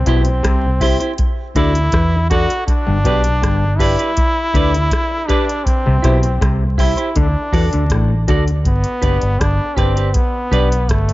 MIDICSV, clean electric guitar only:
0, 0, Header, 1, 3, 480
1, 0, Start_track
1, 0, Key_signature, 1, "major"
1, 0, Tempo, 747198
1, 1722, Time_signature, 4, 2, 24, 8
1, 7151, End_track
2, 0, Start_track
2, 0, Title_t, "Clean electric guitar"
2, 0, Program_c, 0, 27
2, 47, Note_on_c, 0, 64, 91
2, 50, Note_on_c, 0, 67, 83
2, 56, Note_on_c, 0, 72, 86
2, 139, Note_off_c, 0, 64, 0
2, 141, Note_off_c, 0, 67, 0
2, 144, Note_off_c, 0, 72, 0
2, 519, Note_on_c, 0, 64, 72
2, 524, Note_on_c, 0, 67, 85
2, 531, Note_on_c, 0, 72, 86
2, 615, Note_off_c, 0, 64, 0
2, 618, Note_off_c, 0, 67, 0
2, 622, Note_off_c, 0, 72, 0
2, 641, Note_on_c, 0, 72, 55
2, 646, Note_on_c, 0, 67, 50
2, 653, Note_on_c, 0, 64, 53
2, 714, Note_off_c, 0, 72, 0
2, 717, Note_off_c, 0, 67, 0
2, 720, Note_off_c, 0, 64, 0
2, 1001, Note_on_c, 0, 66, 81
2, 1006, Note_on_c, 0, 69, 91
2, 1010, Note_on_c, 0, 74, 96
2, 1096, Note_off_c, 0, 66, 0
2, 1099, Note_off_c, 0, 69, 0
2, 1101, Note_off_c, 0, 74, 0
2, 1482, Note_on_c, 0, 66, 82
2, 1489, Note_on_c, 0, 69, 96
2, 1493, Note_on_c, 0, 74, 89
2, 1576, Note_off_c, 0, 66, 0
2, 1580, Note_off_c, 0, 69, 0
2, 1582, Note_off_c, 0, 74, 0
2, 1966, Note_on_c, 0, 67, 73
2, 1968, Note_on_c, 0, 71, 75
2, 1974, Note_on_c, 0, 74, 89
2, 2058, Note_off_c, 0, 67, 0
2, 2060, Note_off_c, 0, 71, 0
2, 2063, Note_off_c, 0, 74, 0
2, 2438, Note_on_c, 0, 67, 91
2, 2444, Note_on_c, 0, 71, 85
2, 2449, Note_on_c, 0, 74, 104
2, 2535, Note_off_c, 0, 67, 0
2, 2537, Note_off_c, 0, 71, 0
2, 2540, Note_off_c, 0, 74, 0
2, 2560, Note_on_c, 0, 74, 67
2, 2567, Note_on_c, 0, 71, 62
2, 2569, Note_on_c, 0, 67, 52
2, 2634, Note_off_c, 0, 74, 0
2, 2637, Note_off_c, 0, 71, 0
2, 2638, Note_off_c, 0, 67, 0
2, 2918, Note_on_c, 0, 67, 73
2, 2928, Note_on_c, 0, 71, 83
2, 2931, Note_on_c, 0, 74, 89
2, 3014, Note_off_c, 0, 67, 0
2, 3020, Note_off_c, 0, 71, 0
2, 3021, Note_off_c, 0, 74, 0
2, 3395, Note_on_c, 0, 67, 91
2, 3404, Note_on_c, 0, 71, 98
2, 3406, Note_on_c, 0, 74, 98
2, 3493, Note_off_c, 0, 67, 0
2, 3497, Note_off_c, 0, 71, 0
2, 3499, Note_off_c, 0, 74, 0
2, 3870, Note_on_c, 0, 64, 83
2, 3879, Note_on_c, 0, 67, 87
2, 3884, Note_on_c, 0, 72, 93
2, 3970, Note_off_c, 0, 64, 0
2, 3975, Note_off_c, 0, 67, 0
2, 3978, Note_off_c, 0, 72, 0
2, 4355, Note_on_c, 0, 64, 77
2, 4363, Note_on_c, 0, 67, 79
2, 4368, Note_on_c, 0, 72, 78
2, 4453, Note_off_c, 0, 64, 0
2, 4457, Note_off_c, 0, 67, 0
2, 4459, Note_off_c, 0, 72, 0
2, 4478, Note_on_c, 0, 72, 67
2, 4483, Note_on_c, 0, 67, 62
2, 4487, Note_on_c, 0, 64, 49
2, 4553, Note_off_c, 0, 72, 0
2, 4555, Note_off_c, 0, 67, 0
2, 4557, Note_off_c, 0, 64, 0
2, 4835, Note_on_c, 0, 66, 80
2, 4838, Note_on_c, 0, 69, 83
2, 4844, Note_on_c, 0, 74, 87
2, 4933, Note_off_c, 0, 66, 0
2, 4934, Note_off_c, 0, 69, 0
2, 4938, Note_off_c, 0, 74, 0
2, 5319, Note_on_c, 0, 66, 91
2, 5326, Note_on_c, 0, 69, 82
2, 5333, Note_on_c, 0, 74, 103
2, 5415, Note_off_c, 0, 66, 0
2, 5419, Note_off_c, 0, 69, 0
2, 5422, Note_off_c, 0, 74, 0
2, 5792, Note_on_c, 0, 67, 86
2, 5798, Note_on_c, 0, 71, 79
2, 5806, Note_on_c, 0, 74, 82
2, 5892, Note_off_c, 0, 67, 0
2, 5895, Note_off_c, 0, 71, 0
2, 5898, Note_off_c, 0, 74, 0
2, 6273, Note_on_c, 0, 67, 78
2, 6279, Note_on_c, 0, 71, 87
2, 6285, Note_on_c, 0, 74, 87
2, 6372, Note_off_c, 0, 67, 0
2, 6375, Note_off_c, 0, 71, 0
2, 6379, Note_off_c, 0, 74, 0
2, 6396, Note_on_c, 0, 74, 55
2, 6405, Note_on_c, 0, 71, 60
2, 6408, Note_on_c, 0, 67, 50
2, 6472, Note_off_c, 0, 74, 0
2, 6476, Note_off_c, 0, 71, 0
2, 6478, Note_off_c, 0, 67, 0
2, 6755, Note_on_c, 0, 67, 85
2, 6762, Note_on_c, 0, 71, 90
2, 6769, Note_on_c, 0, 74, 96
2, 6854, Note_off_c, 0, 67, 0
2, 6857, Note_off_c, 0, 71, 0
2, 6861, Note_off_c, 0, 74, 0
2, 7151, End_track
3, 0, Start_track
3, 0, Title_t, "Muted clean electric guitar strokes"
3, 1607, Note_on_c, 9, 29, 46
3, 1671, Note_off_c, 9, 29, 0
3, 3282, Note_on_c, 9, 29, 42
3, 3347, Note_off_c, 9, 29, 0
3, 5193, Note_on_c, 9, 29, 45
3, 5257, Note_off_c, 9, 29, 0
3, 7121, Note_on_c, 9, 29, 50
3, 7151, Note_off_c, 9, 29, 0
3, 7151, End_track
0, 0, End_of_file